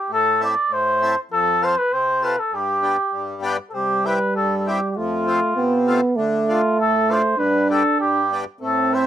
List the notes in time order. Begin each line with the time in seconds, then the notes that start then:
0.10 A2 A4
0.41 C4 E4 A4 D5
0.70 A2 C5
1.02 C4 E4 A4
1.31 F2 A4
1.62 C4 F4 A4 C5
1.78 B4
1.92 C3 C5
2.22 C4 F4 A4 B4
2.39 A4
2.52 G2 G4
2.82 B3 D4 G4
3.12 G2
3.42 B3 D4 G4
3.69 C3 A4
3.74 G3 G4
4.05 C4 E4 G4 B4
4.34 G2 A4
4.57 A4
4.66 C4 E4 G4
4.90 G4
4.96 F2 A3 F4
5.27 A3 C4 F4
5.55 C3 B3
5.87 A3 C4 F4
6.16 D3 A3
6.48 A3 D4 F4
6.78 A2 A4
7.09 A3 D4 F4 C5
7.37 G2 D4 B4
7.70 B3 D4 G4 A4
8.01 G2 G4
8.32 B3 D4 G4
8.61 A2 C4 A4
8.93 A3 C4 E4 C5